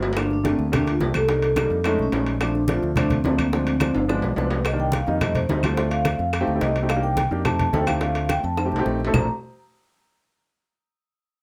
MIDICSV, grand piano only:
0, 0, Header, 1, 2, 480
1, 0, Start_track
1, 0, Key_signature, -2, "major"
1, 0, Tempo, 280374
1, 291, Time_signature, 4, 2, 24, 8
1, 19556, End_track
2, 0, Start_track
2, 0, Title_t, "Grand piano"
2, 0, Program_c, 0, 0
2, 284, Note_on_c, 0, 57, 59
2, 288, Note_on_c, 0, 58, 64
2, 291, Note_on_c, 0, 65, 69
2, 293, Note_on_c, 0, 62, 63
2, 624, Note_off_c, 0, 57, 0
2, 626, Note_off_c, 0, 58, 0
2, 627, Note_off_c, 0, 65, 0
2, 628, Note_off_c, 0, 62, 0
2, 746, Note_on_c, 0, 57, 78
2, 755, Note_on_c, 0, 58, 64
2, 756, Note_on_c, 0, 62, 71
2, 759, Note_on_c, 0, 67, 72
2, 1094, Note_off_c, 0, 57, 0
2, 1099, Note_off_c, 0, 58, 0
2, 1100, Note_off_c, 0, 62, 0
2, 1101, Note_off_c, 0, 67, 0
2, 1230, Note_on_c, 0, 58, 68
2, 1231, Note_on_c, 0, 57, 78
2, 1235, Note_on_c, 0, 62, 64
2, 1241, Note_on_c, 0, 67, 85
2, 1577, Note_off_c, 0, 57, 0
2, 1577, Note_off_c, 0, 58, 0
2, 1579, Note_off_c, 0, 62, 0
2, 1582, Note_off_c, 0, 67, 0
2, 1720, Note_on_c, 0, 58, 63
2, 1721, Note_on_c, 0, 57, 66
2, 1728, Note_on_c, 0, 62, 62
2, 1728, Note_on_c, 0, 67, 74
2, 2062, Note_off_c, 0, 57, 0
2, 2062, Note_off_c, 0, 58, 0
2, 2065, Note_off_c, 0, 62, 0
2, 2066, Note_off_c, 0, 67, 0
2, 2196, Note_on_c, 0, 55, 61
2, 2203, Note_on_c, 0, 58, 67
2, 2203, Note_on_c, 0, 62, 62
2, 2205, Note_on_c, 0, 63, 76
2, 2539, Note_off_c, 0, 55, 0
2, 2543, Note_off_c, 0, 58, 0
2, 2543, Note_off_c, 0, 62, 0
2, 2544, Note_off_c, 0, 63, 0
2, 2687, Note_on_c, 0, 55, 89
2, 2687, Note_on_c, 0, 58, 72
2, 2688, Note_on_c, 0, 62, 71
2, 2689, Note_on_c, 0, 63, 86
2, 3025, Note_off_c, 0, 55, 0
2, 3025, Note_off_c, 0, 58, 0
2, 3025, Note_off_c, 0, 62, 0
2, 3026, Note_off_c, 0, 63, 0
2, 3157, Note_on_c, 0, 56, 93
2, 3159, Note_on_c, 0, 61, 81
2, 3162, Note_on_c, 0, 57, 93
2, 3165, Note_on_c, 0, 63, 98
2, 3500, Note_off_c, 0, 56, 0
2, 3501, Note_off_c, 0, 61, 0
2, 3502, Note_off_c, 0, 57, 0
2, 3504, Note_off_c, 0, 63, 0
2, 3642, Note_on_c, 0, 57, 65
2, 3648, Note_on_c, 0, 56, 69
2, 3653, Note_on_c, 0, 61, 61
2, 3658, Note_on_c, 0, 63, 72
2, 3982, Note_off_c, 0, 57, 0
2, 3985, Note_off_c, 0, 56, 0
2, 3988, Note_off_c, 0, 61, 0
2, 3990, Note_off_c, 0, 63, 0
2, 4139, Note_on_c, 0, 53, 67
2, 4140, Note_on_c, 0, 57, 64
2, 4144, Note_on_c, 0, 62, 72
2, 4147, Note_on_c, 0, 60, 59
2, 4470, Note_off_c, 0, 53, 0
2, 4471, Note_off_c, 0, 57, 0
2, 4473, Note_off_c, 0, 62, 0
2, 4475, Note_off_c, 0, 60, 0
2, 4591, Note_on_c, 0, 53, 78
2, 4596, Note_on_c, 0, 57, 70
2, 4603, Note_on_c, 0, 60, 69
2, 4603, Note_on_c, 0, 62, 80
2, 4936, Note_off_c, 0, 53, 0
2, 4939, Note_off_c, 0, 57, 0
2, 4942, Note_off_c, 0, 60, 0
2, 4943, Note_off_c, 0, 62, 0
2, 5084, Note_on_c, 0, 57, 73
2, 5085, Note_on_c, 0, 53, 78
2, 5086, Note_on_c, 0, 60, 74
2, 5093, Note_on_c, 0, 62, 90
2, 5423, Note_off_c, 0, 53, 0
2, 5423, Note_off_c, 0, 57, 0
2, 5424, Note_off_c, 0, 60, 0
2, 5427, Note_off_c, 0, 62, 0
2, 5567, Note_on_c, 0, 57, 61
2, 5568, Note_on_c, 0, 53, 68
2, 5572, Note_on_c, 0, 60, 61
2, 5576, Note_on_c, 0, 62, 82
2, 5904, Note_off_c, 0, 57, 0
2, 5905, Note_off_c, 0, 53, 0
2, 5906, Note_off_c, 0, 60, 0
2, 5908, Note_off_c, 0, 62, 0
2, 6053, Note_on_c, 0, 60, 60
2, 6054, Note_on_c, 0, 56, 66
2, 6055, Note_on_c, 0, 53, 73
2, 6057, Note_on_c, 0, 62, 71
2, 6387, Note_off_c, 0, 53, 0
2, 6387, Note_off_c, 0, 56, 0
2, 6387, Note_off_c, 0, 60, 0
2, 6389, Note_off_c, 0, 62, 0
2, 6525, Note_on_c, 0, 53, 71
2, 6526, Note_on_c, 0, 60, 67
2, 6527, Note_on_c, 0, 56, 64
2, 6531, Note_on_c, 0, 62, 75
2, 6862, Note_off_c, 0, 53, 0
2, 6863, Note_off_c, 0, 56, 0
2, 6863, Note_off_c, 0, 60, 0
2, 6866, Note_off_c, 0, 62, 0
2, 6994, Note_on_c, 0, 53, 95
2, 6994, Note_on_c, 0, 59, 91
2, 6998, Note_on_c, 0, 56, 91
2, 7005, Note_on_c, 0, 62, 98
2, 7337, Note_off_c, 0, 53, 0
2, 7337, Note_off_c, 0, 59, 0
2, 7339, Note_off_c, 0, 56, 0
2, 7342, Note_off_c, 0, 62, 0
2, 7484, Note_on_c, 0, 53, 76
2, 7486, Note_on_c, 0, 56, 71
2, 7487, Note_on_c, 0, 59, 73
2, 7488, Note_on_c, 0, 62, 88
2, 7822, Note_off_c, 0, 53, 0
2, 7823, Note_off_c, 0, 56, 0
2, 7823, Note_off_c, 0, 59, 0
2, 7823, Note_off_c, 0, 62, 0
2, 8092, Note_on_c, 0, 55, 70
2, 8093, Note_on_c, 0, 51, 79
2, 8100, Note_on_c, 0, 62, 85
2, 8101, Note_on_c, 0, 58, 67
2, 8510, Note_off_c, 0, 51, 0
2, 8510, Note_off_c, 0, 55, 0
2, 8513, Note_off_c, 0, 62, 0
2, 8514, Note_off_c, 0, 58, 0
2, 8677, Note_on_c, 0, 51, 80
2, 8683, Note_on_c, 0, 58, 69
2, 8684, Note_on_c, 0, 55, 69
2, 8693, Note_on_c, 0, 63, 82
2, 8850, Note_off_c, 0, 51, 0
2, 8853, Note_off_c, 0, 58, 0
2, 8854, Note_off_c, 0, 55, 0
2, 8858, Note_off_c, 0, 63, 0
2, 8924, Note_on_c, 0, 57, 69
2, 8926, Note_on_c, 0, 55, 75
2, 8927, Note_on_c, 0, 63, 80
2, 8929, Note_on_c, 0, 60, 60
2, 9261, Note_off_c, 0, 57, 0
2, 9262, Note_off_c, 0, 55, 0
2, 9263, Note_off_c, 0, 63, 0
2, 9264, Note_off_c, 0, 60, 0
2, 9410, Note_on_c, 0, 55, 78
2, 9412, Note_on_c, 0, 57, 68
2, 9412, Note_on_c, 0, 60, 75
2, 9414, Note_on_c, 0, 63, 89
2, 9576, Note_off_c, 0, 55, 0
2, 9577, Note_off_c, 0, 57, 0
2, 9577, Note_off_c, 0, 60, 0
2, 9578, Note_off_c, 0, 63, 0
2, 9660, Note_on_c, 0, 55, 79
2, 9663, Note_on_c, 0, 60, 78
2, 9664, Note_on_c, 0, 57, 69
2, 9664, Note_on_c, 0, 65, 86
2, 9864, Note_off_c, 0, 60, 0
2, 9864, Note_off_c, 0, 65, 0
2, 9865, Note_off_c, 0, 57, 0
2, 9889, Note_on_c, 0, 60, 66
2, 9890, Note_on_c, 0, 57, 70
2, 9890, Note_on_c, 0, 65, 79
2, 9893, Note_off_c, 0, 55, 0
2, 9893, Note_on_c, 0, 62, 68
2, 10656, Note_off_c, 0, 60, 0
2, 10656, Note_off_c, 0, 65, 0
2, 10657, Note_off_c, 0, 57, 0
2, 10658, Note_off_c, 0, 62, 0
2, 10966, Note_on_c, 0, 63, 85
2, 10967, Note_on_c, 0, 60, 83
2, 10967, Note_on_c, 0, 67, 106
2, 10968, Note_on_c, 0, 57, 90
2, 11134, Note_off_c, 0, 63, 0
2, 11135, Note_off_c, 0, 57, 0
2, 11135, Note_off_c, 0, 60, 0
2, 11135, Note_off_c, 0, 67, 0
2, 11209, Note_on_c, 0, 57, 80
2, 11214, Note_on_c, 0, 63, 72
2, 11217, Note_on_c, 0, 60, 70
2, 11220, Note_on_c, 0, 67, 87
2, 11544, Note_off_c, 0, 57, 0
2, 11546, Note_off_c, 0, 63, 0
2, 11548, Note_off_c, 0, 60, 0
2, 11549, Note_off_c, 0, 67, 0
2, 11681, Note_on_c, 0, 57, 81
2, 11685, Note_on_c, 0, 60, 71
2, 11685, Note_on_c, 0, 63, 76
2, 11687, Note_on_c, 0, 67, 91
2, 11804, Note_off_c, 0, 57, 0
2, 11806, Note_off_c, 0, 60, 0
2, 11806, Note_off_c, 0, 63, 0
2, 11807, Note_off_c, 0, 67, 0
2, 11917, Note_on_c, 0, 58, 82
2, 11920, Note_on_c, 0, 62, 69
2, 11923, Note_on_c, 0, 63, 73
2, 11924, Note_on_c, 0, 67, 83
2, 12342, Note_off_c, 0, 58, 0
2, 12344, Note_off_c, 0, 62, 0
2, 12345, Note_off_c, 0, 63, 0
2, 12345, Note_off_c, 0, 67, 0
2, 12515, Note_on_c, 0, 58, 73
2, 12516, Note_on_c, 0, 63, 75
2, 12520, Note_on_c, 0, 62, 74
2, 12530, Note_on_c, 0, 67, 91
2, 12689, Note_off_c, 0, 58, 0
2, 12690, Note_off_c, 0, 63, 0
2, 12692, Note_off_c, 0, 62, 0
2, 12697, Note_off_c, 0, 67, 0
2, 12755, Note_on_c, 0, 57, 70
2, 12755, Note_on_c, 0, 60, 65
2, 12762, Note_on_c, 0, 67, 80
2, 12765, Note_on_c, 0, 63, 65
2, 13097, Note_off_c, 0, 57, 0
2, 13097, Note_off_c, 0, 60, 0
2, 13101, Note_off_c, 0, 67, 0
2, 13102, Note_off_c, 0, 63, 0
2, 13227, Note_on_c, 0, 57, 77
2, 13228, Note_on_c, 0, 60, 69
2, 13237, Note_on_c, 0, 69, 85
2, 13238, Note_on_c, 0, 63, 70
2, 13405, Note_off_c, 0, 57, 0
2, 13405, Note_off_c, 0, 60, 0
2, 13410, Note_off_c, 0, 69, 0
2, 13411, Note_off_c, 0, 63, 0
2, 13470, Note_on_c, 0, 57, 80
2, 13480, Note_on_c, 0, 60, 71
2, 13480, Note_on_c, 0, 67, 84
2, 13481, Note_on_c, 0, 63, 72
2, 13683, Note_off_c, 0, 57, 0
2, 13688, Note_off_c, 0, 60, 0
2, 13709, Note_on_c, 0, 57, 77
2, 13714, Note_on_c, 0, 60, 70
2, 13716, Note_on_c, 0, 62, 71
2, 13721, Note_on_c, 0, 65, 72
2, 13723, Note_off_c, 0, 67, 0
2, 13724, Note_off_c, 0, 63, 0
2, 14486, Note_off_c, 0, 57, 0
2, 14489, Note_off_c, 0, 60, 0
2, 14490, Note_off_c, 0, 62, 0
2, 14492, Note_off_c, 0, 65, 0
2, 14808, Note_on_c, 0, 57, 75
2, 14809, Note_on_c, 0, 60, 69
2, 14811, Note_on_c, 0, 63, 67
2, 14816, Note_on_c, 0, 67, 87
2, 14976, Note_off_c, 0, 57, 0
2, 14976, Note_off_c, 0, 60, 0
2, 14977, Note_off_c, 0, 63, 0
2, 14980, Note_off_c, 0, 67, 0
2, 15040, Note_on_c, 0, 57, 91
2, 15046, Note_on_c, 0, 60, 86
2, 15047, Note_on_c, 0, 63, 82
2, 15051, Note_on_c, 0, 67, 108
2, 15380, Note_off_c, 0, 57, 0
2, 15383, Note_off_c, 0, 60, 0
2, 15383, Note_off_c, 0, 63, 0
2, 15385, Note_off_c, 0, 67, 0
2, 15520, Note_on_c, 0, 57, 99
2, 15524, Note_on_c, 0, 60, 80
2, 15527, Note_on_c, 0, 69, 100
2, 15528, Note_on_c, 0, 63, 84
2, 15612, Note_off_c, 0, 60, 0
2, 15620, Note_off_c, 0, 57, 0
2, 15637, Note_on_c, 0, 60, 63
2, 15645, Note_on_c, 0, 57, 75
2, 15645, Note_on_c, 0, 65, 79
2, 15647, Note_off_c, 0, 69, 0
2, 15648, Note_off_c, 0, 63, 0
2, 15648, Note_on_c, 0, 62, 68
2, 15865, Note_off_c, 0, 60, 0
2, 15869, Note_off_c, 0, 65, 0
2, 15870, Note_off_c, 0, 57, 0
2, 15871, Note_off_c, 0, 62, 0
2, 19556, End_track
0, 0, End_of_file